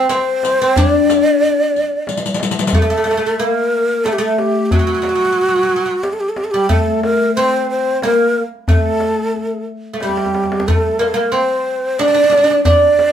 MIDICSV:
0, 0, Header, 1, 5, 480
1, 0, Start_track
1, 0, Tempo, 660066
1, 555, Time_signature, 3, 2, 24, 8
1, 9541, End_track
2, 0, Start_track
2, 0, Title_t, "Ney"
2, 0, Program_c, 0, 77
2, 0, Note_on_c, 0, 72, 83
2, 74, Note_off_c, 0, 72, 0
2, 81, Note_on_c, 0, 72, 89
2, 556, Note_on_c, 0, 74, 85
2, 567, Note_off_c, 0, 72, 0
2, 1752, Note_off_c, 0, 74, 0
2, 1988, Note_on_c, 0, 69, 72
2, 2468, Note_on_c, 0, 70, 74
2, 2479, Note_off_c, 0, 69, 0
2, 2941, Note_on_c, 0, 69, 76
2, 2952, Note_off_c, 0, 70, 0
2, 3002, Note_on_c, 0, 67, 66
2, 3013, Note_off_c, 0, 69, 0
2, 3062, Note_on_c, 0, 69, 83
2, 3073, Note_off_c, 0, 67, 0
2, 3191, Note_on_c, 0, 67, 75
2, 3202, Note_off_c, 0, 69, 0
2, 3387, Note_off_c, 0, 67, 0
2, 3387, Note_on_c, 0, 67, 60
2, 3433, Note_on_c, 0, 66, 83
2, 3444, Note_off_c, 0, 67, 0
2, 4388, Note_on_c, 0, 67, 67
2, 4399, Note_off_c, 0, 66, 0
2, 4457, Note_on_c, 0, 69, 68
2, 4468, Note_off_c, 0, 67, 0
2, 4510, Note_on_c, 0, 67, 66
2, 4521, Note_off_c, 0, 69, 0
2, 4575, Note_on_c, 0, 69, 63
2, 4586, Note_off_c, 0, 67, 0
2, 4635, Note_on_c, 0, 67, 68
2, 4646, Note_off_c, 0, 69, 0
2, 4685, Note_on_c, 0, 69, 68
2, 4696, Note_off_c, 0, 67, 0
2, 4735, Note_on_c, 0, 67, 78
2, 4746, Note_off_c, 0, 69, 0
2, 4868, Note_off_c, 0, 67, 0
2, 4879, Note_on_c, 0, 69, 85
2, 5100, Note_off_c, 0, 69, 0
2, 5116, Note_on_c, 0, 70, 82
2, 5338, Note_off_c, 0, 70, 0
2, 5347, Note_on_c, 0, 72, 89
2, 5574, Note_off_c, 0, 72, 0
2, 5599, Note_on_c, 0, 72, 89
2, 5820, Note_off_c, 0, 72, 0
2, 5846, Note_on_c, 0, 70, 89
2, 6105, Note_off_c, 0, 70, 0
2, 6321, Note_on_c, 0, 69, 83
2, 7011, Note_off_c, 0, 69, 0
2, 7278, Note_on_c, 0, 67, 75
2, 7761, Note_on_c, 0, 69, 74
2, 7772, Note_off_c, 0, 67, 0
2, 7994, Note_on_c, 0, 70, 73
2, 8005, Note_off_c, 0, 69, 0
2, 8058, Note_on_c, 0, 69, 60
2, 8069, Note_off_c, 0, 70, 0
2, 8110, Note_on_c, 0, 70, 76
2, 8121, Note_off_c, 0, 69, 0
2, 8240, Note_on_c, 0, 72, 87
2, 8251, Note_off_c, 0, 70, 0
2, 8721, Note_on_c, 0, 74, 102
2, 8732, Note_off_c, 0, 72, 0
2, 9192, Note_off_c, 0, 74, 0
2, 9196, Note_on_c, 0, 74, 89
2, 9541, Note_off_c, 0, 74, 0
2, 9541, End_track
3, 0, Start_track
3, 0, Title_t, "Oud"
3, 0, Program_c, 1, 24
3, 68, Note_on_c, 1, 60, 75
3, 439, Note_off_c, 1, 60, 0
3, 448, Note_on_c, 1, 60, 74
3, 560, Note_off_c, 1, 60, 0
3, 563, Note_on_c, 1, 62, 85
3, 1727, Note_off_c, 1, 62, 0
3, 1996, Note_on_c, 1, 57, 73
3, 2042, Note_off_c, 1, 57, 0
3, 2050, Note_on_c, 1, 57, 58
3, 2100, Note_off_c, 1, 57, 0
3, 2109, Note_on_c, 1, 57, 62
3, 2154, Note_off_c, 1, 57, 0
3, 2163, Note_on_c, 1, 57, 54
3, 2201, Note_off_c, 1, 57, 0
3, 2210, Note_on_c, 1, 57, 61
3, 2251, Note_off_c, 1, 57, 0
3, 2260, Note_on_c, 1, 57, 55
3, 2299, Note_off_c, 1, 57, 0
3, 2307, Note_on_c, 1, 57, 61
3, 2364, Note_off_c, 1, 57, 0
3, 2373, Note_on_c, 1, 57, 56
3, 2429, Note_off_c, 1, 57, 0
3, 2469, Note_on_c, 1, 58, 78
3, 2947, Note_off_c, 1, 58, 0
3, 2950, Note_on_c, 1, 57, 76
3, 3034, Note_off_c, 1, 57, 0
3, 3043, Note_on_c, 1, 57, 76
3, 3431, Note_on_c, 1, 54, 58
3, 3437, Note_off_c, 1, 57, 0
3, 3475, Note_off_c, 1, 54, 0
3, 3483, Note_on_c, 1, 54, 46
3, 3532, Note_off_c, 1, 54, 0
3, 3541, Note_on_c, 1, 54, 50
3, 3587, Note_off_c, 1, 54, 0
3, 3596, Note_on_c, 1, 54, 41
3, 3641, Note_off_c, 1, 54, 0
3, 3649, Note_on_c, 1, 54, 43
3, 3691, Note_off_c, 1, 54, 0
3, 3700, Note_on_c, 1, 54, 38
3, 3739, Note_off_c, 1, 54, 0
3, 3747, Note_on_c, 1, 54, 42
3, 3804, Note_off_c, 1, 54, 0
3, 3816, Note_on_c, 1, 54, 36
3, 3863, Note_off_c, 1, 54, 0
3, 3872, Note_on_c, 1, 54, 40
3, 3921, Note_off_c, 1, 54, 0
3, 3936, Note_on_c, 1, 54, 36
3, 3979, Note_off_c, 1, 54, 0
3, 3988, Note_on_c, 1, 54, 41
3, 4031, Note_off_c, 1, 54, 0
3, 4040, Note_on_c, 1, 54, 36
3, 4085, Note_off_c, 1, 54, 0
3, 4093, Note_on_c, 1, 54, 44
3, 4128, Note_off_c, 1, 54, 0
3, 4137, Note_on_c, 1, 54, 38
3, 4180, Note_off_c, 1, 54, 0
3, 4189, Note_on_c, 1, 54, 49
3, 4243, Note_off_c, 1, 54, 0
3, 4259, Note_on_c, 1, 54, 44
3, 4306, Note_off_c, 1, 54, 0
3, 4754, Note_on_c, 1, 55, 56
3, 4863, Note_off_c, 1, 55, 0
3, 4866, Note_on_c, 1, 57, 78
3, 5359, Note_on_c, 1, 60, 78
3, 5365, Note_off_c, 1, 57, 0
3, 5842, Note_on_c, 1, 58, 74
3, 5851, Note_off_c, 1, 60, 0
3, 6103, Note_off_c, 1, 58, 0
3, 6316, Note_on_c, 1, 57, 69
3, 7008, Note_off_c, 1, 57, 0
3, 7225, Note_on_c, 1, 57, 48
3, 7277, Note_off_c, 1, 57, 0
3, 7291, Note_on_c, 1, 55, 60
3, 7763, Note_off_c, 1, 55, 0
3, 7766, Note_on_c, 1, 57, 67
3, 7991, Note_off_c, 1, 57, 0
3, 7994, Note_on_c, 1, 58, 67
3, 8091, Note_off_c, 1, 58, 0
3, 8100, Note_on_c, 1, 58, 70
3, 8230, Note_on_c, 1, 60, 69
3, 8243, Note_off_c, 1, 58, 0
3, 8718, Note_off_c, 1, 60, 0
3, 8721, Note_on_c, 1, 62, 79
3, 8777, Note_off_c, 1, 62, 0
3, 8784, Note_on_c, 1, 62, 57
3, 8823, Note_off_c, 1, 62, 0
3, 8832, Note_on_c, 1, 62, 63
3, 8887, Note_off_c, 1, 62, 0
3, 8898, Note_on_c, 1, 62, 59
3, 8932, Note_off_c, 1, 62, 0
3, 8941, Note_on_c, 1, 62, 64
3, 8989, Note_off_c, 1, 62, 0
3, 8998, Note_on_c, 1, 62, 56
3, 9037, Note_off_c, 1, 62, 0
3, 9045, Note_on_c, 1, 62, 64
3, 9083, Note_off_c, 1, 62, 0
3, 9091, Note_on_c, 1, 62, 53
3, 9154, Note_off_c, 1, 62, 0
3, 9201, Note_on_c, 1, 62, 78
3, 9541, Note_off_c, 1, 62, 0
3, 9541, End_track
4, 0, Start_track
4, 0, Title_t, "Riq"
4, 74, Note_on_c, 9, 54, 47
4, 147, Note_off_c, 9, 54, 0
4, 325, Note_on_c, 9, 54, 56
4, 398, Note_off_c, 9, 54, 0
4, 561, Note_on_c, 9, 54, 62
4, 634, Note_off_c, 9, 54, 0
4, 799, Note_on_c, 9, 54, 54
4, 872, Note_off_c, 9, 54, 0
4, 1042, Note_on_c, 9, 54, 15
4, 1115, Note_off_c, 9, 54, 0
4, 1282, Note_on_c, 9, 54, 17
4, 1354, Note_off_c, 9, 54, 0
4, 1518, Note_on_c, 9, 54, 50
4, 1580, Note_off_c, 9, 54, 0
4, 1580, Note_on_c, 9, 54, 57
4, 1641, Note_off_c, 9, 54, 0
4, 1641, Note_on_c, 9, 54, 59
4, 1704, Note_off_c, 9, 54, 0
4, 1704, Note_on_c, 9, 54, 66
4, 1765, Note_off_c, 9, 54, 0
4, 1765, Note_on_c, 9, 54, 72
4, 1827, Note_off_c, 9, 54, 0
4, 1827, Note_on_c, 9, 54, 74
4, 1884, Note_off_c, 9, 54, 0
4, 1884, Note_on_c, 9, 54, 80
4, 1944, Note_off_c, 9, 54, 0
4, 1944, Note_on_c, 9, 54, 90
4, 2017, Note_off_c, 9, 54, 0
4, 9541, End_track
5, 0, Start_track
5, 0, Title_t, "Tombak"
5, 76, Note_on_c, 9, 63, 61
5, 149, Note_off_c, 9, 63, 0
5, 314, Note_on_c, 9, 63, 58
5, 387, Note_off_c, 9, 63, 0
5, 555, Note_on_c, 9, 64, 85
5, 628, Note_off_c, 9, 64, 0
5, 796, Note_on_c, 9, 63, 64
5, 869, Note_off_c, 9, 63, 0
5, 1034, Note_on_c, 9, 62, 23
5, 1107, Note_off_c, 9, 62, 0
5, 1271, Note_on_c, 9, 62, 24
5, 1343, Note_off_c, 9, 62, 0
5, 1507, Note_on_c, 9, 63, 65
5, 1580, Note_off_c, 9, 63, 0
5, 1744, Note_on_c, 9, 63, 60
5, 1816, Note_off_c, 9, 63, 0
5, 1983, Note_on_c, 9, 64, 75
5, 2056, Note_off_c, 9, 64, 0
5, 2223, Note_on_c, 9, 63, 57
5, 2296, Note_off_c, 9, 63, 0
5, 2947, Note_on_c, 9, 63, 59
5, 3020, Note_off_c, 9, 63, 0
5, 3188, Note_on_c, 9, 63, 59
5, 3260, Note_off_c, 9, 63, 0
5, 3427, Note_on_c, 9, 64, 77
5, 3499, Note_off_c, 9, 64, 0
5, 3661, Note_on_c, 9, 63, 66
5, 3734, Note_off_c, 9, 63, 0
5, 4388, Note_on_c, 9, 63, 68
5, 4461, Note_off_c, 9, 63, 0
5, 4628, Note_on_c, 9, 63, 60
5, 4701, Note_off_c, 9, 63, 0
5, 4868, Note_on_c, 9, 64, 71
5, 4941, Note_off_c, 9, 64, 0
5, 5115, Note_on_c, 9, 63, 65
5, 5188, Note_off_c, 9, 63, 0
5, 5835, Note_on_c, 9, 63, 61
5, 5908, Note_off_c, 9, 63, 0
5, 6310, Note_on_c, 9, 64, 84
5, 6383, Note_off_c, 9, 64, 0
5, 6546, Note_on_c, 9, 63, 57
5, 6618, Note_off_c, 9, 63, 0
5, 6794, Note_on_c, 9, 62, 23
5, 6866, Note_off_c, 9, 62, 0
5, 7275, Note_on_c, 9, 63, 53
5, 7336, Note_on_c, 9, 62, 56
5, 7348, Note_off_c, 9, 63, 0
5, 7399, Note_on_c, 9, 63, 57
5, 7408, Note_off_c, 9, 62, 0
5, 7459, Note_on_c, 9, 62, 64
5, 7472, Note_off_c, 9, 63, 0
5, 7523, Note_on_c, 9, 63, 64
5, 7532, Note_off_c, 9, 62, 0
5, 7589, Note_on_c, 9, 62, 68
5, 7596, Note_off_c, 9, 63, 0
5, 7649, Note_on_c, 9, 63, 78
5, 7661, Note_off_c, 9, 62, 0
5, 7707, Note_on_c, 9, 62, 87
5, 7721, Note_off_c, 9, 63, 0
5, 7769, Note_on_c, 9, 64, 73
5, 7780, Note_off_c, 9, 62, 0
5, 7842, Note_off_c, 9, 64, 0
5, 8009, Note_on_c, 9, 63, 62
5, 8082, Note_off_c, 9, 63, 0
5, 8724, Note_on_c, 9, 63, 67
5, 8796, Note_off_c, 9, 63, 0
5, 8964, Note_on_c, 9, 63, 65
5, 9036, Note_off_c, 9, 63, 0
5, 9200, Note_on_c, 9, 64, 87
5, 9272, Note_off_c, 9, 64, 0
5, 9446, Note_on_c, 9, 63, 68
5, 9519, Note_off_c, 9, 63, 0
5, 9541, End_track
0, 0, End_of_file